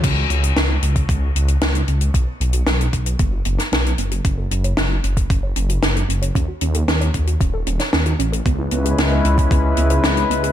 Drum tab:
CC |x---------------|----------------|----------------|----------------|
HH |x-xxx-xxx-xxxxxx|x-xxxxxxx-xxxxxx|x-xxx-xxx-xxxxxx|x-xxxxxxx-xxxxxx|
SD |----o-------o---|----o------oo---|----o-------o---|----o------oo---|
BD |o------oo-------|o-----o-o-------|o------oo-------|o-----o-o-------|

CC |----------------|
HH |x-xxx-xxx-xxxxxx|
SD |----o-------o---|
BD |o------oo-------|